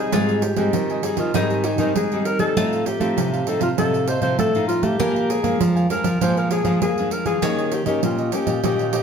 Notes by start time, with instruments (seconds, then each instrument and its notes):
Already playing: nylon-string guitar C3 C4 D#4 G#4, cavaquinho G#4 C5 D#5, alto saxophone G#4
0.12 nylon-string guitar G#2 G3 G#3 C4 D#4, mandolin F4, cavaquinho G4 C5 D#5 G#5, pandeiro
0.29 cavaquinho C5 D#5 G#5, pandeiro
0.42 alto saxophone G4, muted cavaquinho stroke, pandeiro
0.56 nylon-string guitar G3 G#3 C4 D#4, alto saxophone G4, cavaquinho C5 D#5 G#5, pandeiro
0.73 nylon-string guitar D#3, pandeiro
0.90 cavaquinho C5 D#5 G#5, pandeiro
1.03 nylon-string guitar G3 C4 D#4, cavaquinho G4 C5 D#5 G#5, alto saxophone G#4, pandeiro
1.17 nylon-string guitar D#3, alto saxophone F4, cavaquinho C5 D#5 G#5, pandeiro
1.34 nylon-string guitar G#2 D#3 G3 C4 D#4, mandolin D#4, alto saxophone G4, cavaquinho G4 C5 D#5 G#5, pandeiro
1.42 alto saxophone G#4
1.49 alto saxophone G4, cavaquinho C5 D#5 G#5, pandeiro
1.64 alto saxophone D#4, cavaquinho G4 C5 D#5 G#5, pandeiro
1.78 nylon-string guitar D#3 G3 C4 D#4, alto saxophone D#4, cavaquinho C5 D#5 G#5, pandeiro
1.96 nylon-string guitar D#3 G#3, alto saxophone G#4, pandeiro
2.12 nylon-string guitar G3 C4 D#4, cavaquinho C5 D#5 G#5, pandeiro
2.25 alto saxophone A#4, muted cavaquinho stroke, pandeiro
2.39 nylon-string guitar G3, alto saxophone A4, cavaquinho C5 D#5 G#5, pandeiro
2.57 nylon-string guitar A2 F3 A3 C4 D#4, cavaquinho D#4 A4 C5 F5, mandolin F4, pandeiro
2.73 cavaquinho A4 C5 F5, pandeiro
2.86 alto saxophone G4, muted cavaquinho stroke, pandeiro
3.00 nylon-string guitar F3 A3 C4 D#4, alto saxophone G4, cavaquinho A4 C5 F5, pandeiro
3.17 nylon-string guitar A2 C3, pandeiro
3.33 cavaquinho A4 C5 F5, pandeiro
3.47 nylon-string guitar F3 C4 D#4, cavaquinho D#4 A4 C5 F5, alto saxophone A4, pandeiro
3.61 nylon-string guitar C3, alto saxophone F4, cavaquinho A4 C5 F5, pandeiro
3.78 nylon-string guitar A2 C3 F3 C4 D#4, cavaquinho D#4 A4 C5 F5, alto saxophone A4, pandeiro
3.94 cavaquinho A4 C5 F5, pandeiro
4.08 cavaquinho D#4 A4 C5 F5, alto saxophone C5, pandeiro
4.22 nylon-string guitar C3 F3 C4 D#4, cavaquinho A4 C5 F5, alto saxophone C5, pandeiro
4.39 nylon-string guitar A2 A3, alto saxophone A4, pandeiro
4.55 nylon-string guitar F3 C4 D#4, cavaquinho A4 C5 F5, pandeiro
4.68 alto saxophone F4, muted cavaquinho stroke, pandeiro
4.83 nylon-string guitar A3, alto saxophone G4, cavaquinho A4 C5 F5, pandeiro
4.99 nylon-string guitar A#2 F3 G#3 A#3 D4, cavaquinho D4 A#4 F5 G#5, mandolin A#4, pandeiro
5.16 cavaquinho A#4 F5, pandeiro
5.29 alto saxophone G#4, muted cavaquinho stroke, pandeiro
5.43 nylon-string guitar F3 G#3 A#3 D4, cavaquinho A#4 F5 G#5, pandeiro
5.61 nylon-string guitar F2 F3, pandeiro
5.76 cavaquinho A#4 F5 G#5, pandeiro
5.89 nylon-string guitar F3 G#3 D4, cavaquinho D4 A#4 F5 G#5, alto saxophone A#4, pandeiro
6.04 nylon-string guitar F3, cavaquinho A#4 F5 G#5, pandeiro
6.21 nylon-string guitar A#2 F3 G#3 D4, cavaquinho D4 A#4 F5 G#5, alto saxophone C5, pandeiro
6.37 alto saxophone A#4, cavaquinho A#4 F5 G#5, pandeiro
6.51 cavaquinho D4 A#4 F5 G#5, alto saxophone G#4, pandeiro
6.65 nylon-string guitar F3 G#3 D4, cavaquinho A#4 F5 G#5, pandeiro
6.82 nylon-string guitar F2 A#3, alto saxophone G#4, pandeiro
6.98 nylon-string guitar F3 G#3 D4, cavaquinho A#4 F5 G#5, pandeiro
7.11 alto saxophone A#4, muted cavaquinho stroke, pandeiro
7.25 nylon-string guitar E3, alto saxophone G#4, cavaquinho A#4 F5 G#5, pandeiro
7.42 nylon-string guitar D#3 A#3 C#4, cavaquinho D#4 G4 C#5 D#5, mandolin C#5, pandeiro
7.58 cavaquinho G4 C#5 D#5, pandeiro
7.72 alto saxophone G4, muted cavaquinho stroke, pandeiro
7.86 nylon-string guitar D#3 A#3 C#4 G4, alto saxophone G4, cavaquinho G4 C#5 D#5, pandeiro
8.03 nylon-string guitar A#2, alto saxophone F4, pandeiro
8.18 cavaquinho G4 C#5 D#5, pandeiro
8.32 nylon-string guitar A#3 C#4 G4, cavaquinho D#4 G4 C#5 D#5, alto saxophone G4, pandeiro
8.46 nylon-string guitar A#2, cavaquinho G4 C#5 D#5, pandeiro
8.63 nylon-string guitar A#2 D#3 A#3 C#4 G4, cavaquinho D#4 G4 C#5 D#5, pandeiro
8.79 cavaquinho G4 C#5 D#5, pandeiro
8.93 cavaquinho D#4 G4 C#5 D#5, pandeiro